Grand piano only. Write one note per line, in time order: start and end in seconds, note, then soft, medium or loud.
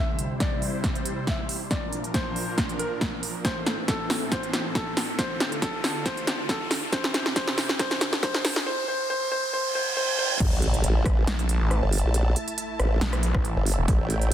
0.00 0.28 E5 medium
0.40 1.19 D5 medium
1.27 1.58 E5 medium
1.71 2.02 D5 medium
2.14 2.71 C5 medium
2.79 3.37 A#4 medium
3.45 3.76 C5 medium
3.88 4.30 A4 medium
4.32 4.63 C5 medium
4.75 5.17 A4 medium
5.19 5.49 C5 medium
5.62 6.04 A4 medium
6.06 6.36 C5 medium
6.49 6.91 A4 medium
6.93 7.23 C5 loud
7.36 7.67 C5 loud
7.79 8.10 C5 loud
8.23 8.54 C5 loud
8.66 8.87 C5 loud
8.88 9.08 C5 loud
9.10 9.30 C5 loud
9.32 9.52 C5 loud
9.53 9.73 C5 loud
9.75 9.95 C5 loud
9.97 10.17 C5 loud
10.19 10.39 C5 loud